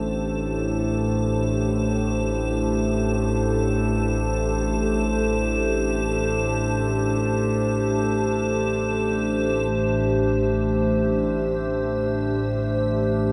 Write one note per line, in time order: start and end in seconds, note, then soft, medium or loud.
0.00 9.70 A1 medium
0.00 9.69 A2 medium
0.00 13.32 A3 medium
0.00 13.32 D4 medium
0.00 13.32 G4 medium
0.00 9.73 A4 medium
0.00 13.32 C5 medium
9.70 13.32 A1 medium
9.70 13.32 A2 medium
9.70 13.32 E5 medium